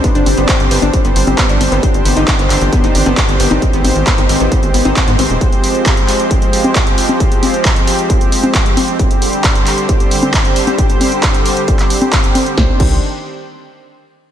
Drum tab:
CC |----------------|----------------|----------------|----------------|
HH |xxoxxxoxxxoxxxox|xxoxxxoxxxoxxxox|xxoxxxoxxxoxxxox|xxoxxxoxxxoxxxox|
CP |----x-------x---|----x-x-----x---|----x-------x---|----x-x-----x---|
SD |----------------|----------------|----------------|----------------|
CG |--o--------o--o-|-----------o---o|--o--------o--o-|-----------o---o|
BD |o---o---o---o---|o---o---o---o---|o---o---o---o---|o---o---o---o---|

CC |----------------|----------------|----------------|--x-------------|
HH |xxoxxxoxxxoxxxox|xxoxxxoxxxoxxxox|xxoxxxoxxxoxxxox|----------------|
CP |----x-------x---|----x-x-----x---|----x----x--x---|----------------|
SD |----------------|----------------|----------------|o---------------|
CG |--o--------o--o-|-----------o---o|--o--------o--o-|----------------|
BD |o---o---o---o---|o---o---o---o---|o---o---o---o---|o-o-------------|